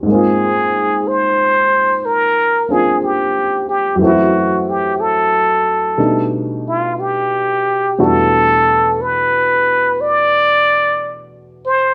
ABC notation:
X:1
M:4/4
L:1/16
Q:"Swing" 1/4=60
K:Em
V:1 name="Muted trumpet"
_A4 c4 _B2 A2 G2 G2 | F2 G2 A4- A z =F2 G4 | A4 B4 d4- d z c2 |]
V:2 name="Grand piano"
[_A,,_A,_B,C=F]8- [A,,A,B,CF]2 [B,CDF]6 | [F,,E,A,CE]8 [B,,G,A,D^D]8 | [E,,B,,G,A,DF]16 |]